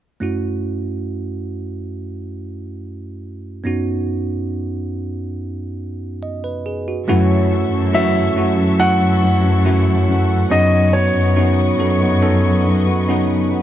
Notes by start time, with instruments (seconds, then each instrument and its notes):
0.20 tine electric piano F#2 A3 C#4 E4 F#4
3.64 tine electric piano F#2 B3 C#4 D#4 F#4
6.23 tine electric piano D#5
6.44 tine electric piano B4
6.66 tine electric piano G#4
6.88 tine electric piano F#4
7.08 cello section F#2, nylon-string guitar F#2 C#3 E3 A3 C#4 F#4, tine electric piano A3 C#4 E4 F#4, string section A4 E5 F#5 C#6
7.50 nylon-string guitar E3 A3 C#4 F#4
7.71 cello section F#2
7.93 nylon-string guitar F#2 C#3 E3 A3 C#4 F#4, tine electric piano A3 C#4 E4 F#4, grand piano E5
8.36 cello section F#2, nylon-string guitar E3 A3 C#4 F#4, tine electric piano A3 C#4 E4 F#4
8.57 nylon-string guitar E3 A3 C#4 F#4
8.79 tine electric piano A3 C#4 E4 F#4, grand piano F#5
9.00 nylon-string guitar E3 A3 C#4 F#4
9.21 nylon-string guitar E3 A3 C#4 F#4
9.43 nylon-string guitar E3 A3 C#4 F#4
9.64 nylon-string guitar F#2 C#3 E3 A3 C#4 F#4, tine electric piano A3 C#4 E4 F#4
10.07 nylon-string guitar E3 A3 C#4 F#4
10.50 cello section F#2, nylon-string guitar F#2 C#3 F#3 B3 D#4 F#4, tine electric piano B3 C#4 D#4 F#4, string section B4 D#5 C#6, grand piano D#5
10.93 nylon-string guitar F#3 B3 D#4 F#4, grand piano C#5
11.15 cello section F#2
11.35 nylon-string guitar F#2 C#3 F#3 B3 D#4 F#4, tine electric piano B3 C#4 D#4 F#4
11.78 cello section F#2, nylon-string guitar F#3 B3 D#4, tine electric piano B3 C#4 D#4 A4
11.82 nylon-string guitar F#4
12.01 nylon-string guitar F#3 B3 D#4 F#4
12.21 tine electric piano B3 C#4 D#4 A4
12.44 nylon-string guitar F#3 B3 D#4 F#4
12.66 nylon-string guitar F#3 B3 D#4 F#4
12.87 nylon-string guitar F#3 B3 D#4 F#4
13.08 nylon-string guitar F#2 C#3 F#3 B3 D#4 F#4, tine electric piano B3 C#4 D#4 F#4
13.50 nylon-string guitar F#3 B3 D#4 F#4